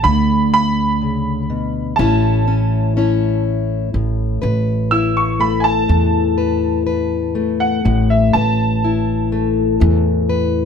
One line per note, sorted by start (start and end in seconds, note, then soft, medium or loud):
0.00 1.99 D3 medium
0.00 2.00 A4 medium
0.00 0.52 B5 medium
0.05 1.95 D2 medium
0.54 2.04 B5 loud
1.01 1.49 C#3 medium
1.50 1.98 B2 medium
1.96 3.90 A1 medium
1.96 3.93 A2 medium
1.96 3.88 A3 medium
1.96 2.46 C#4 medium
1.96 3.40 A5 medium
2.00 2.97 E4 medium
2.00 2.97 C#5 medium
2.48 2.96 C#4 medium
2.97 3.88 C#4 medium
2.97 4.90 E4 medium
2.97 3.89 C#5 medium
3.94 4.41 A1 medium
3.94 7.84 A2 medium
4.42 5.85 A1 medium
4.42 6.36 B4 medium
4.91 7.79 E4 soft
4.91 5.14 E6 medium
5.17 5.39 C#6 medium
5.40 7.35 A3 medium
5.40 5.63 B5 medium
5.60 5.66 G#5 soft
5.60 7.56 A5 medium
5.88 7.81 E2 loud
5.88 7.78 E3 medium
6.38 6.85 B4 medium
6.87 7.79 B4 medium
7.35 8.39 A3 medium
7.60 8.08 F#5 medium
7.85 8.31 A1 medium
7.85 10.65 A2 medium
8.10 8.32 E5 medium
8.33 9.77 A1 medium
8.33 10.28 B4 medium
8.33 10.25 A5 medium
8.84 10.65 E4 medium
9.32 10.65 A3 medium
9.80 10.65 E2 loud
9.80 10.65 E3 medium
10.29 10.65 B4 medium